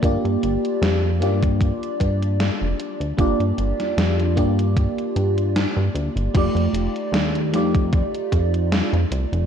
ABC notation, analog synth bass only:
X:1
M:4/4
L:1/16
Q:"Swing 16ths" 1/4=76
K:Gm
V:1 name="Analog synth bass" clef=bass
G,,, G,, G,,, z F,,2 G,,2 z2 G,,2 z F,,, z D,, | G,,, G,, G,,, F,, F,,2 G,,2 z2 G,,2 z G,, D,, G,,, | F,,, F,, F,,, z E,,2 F,,2 z2 F,,2 z F,, C,, F,,, |]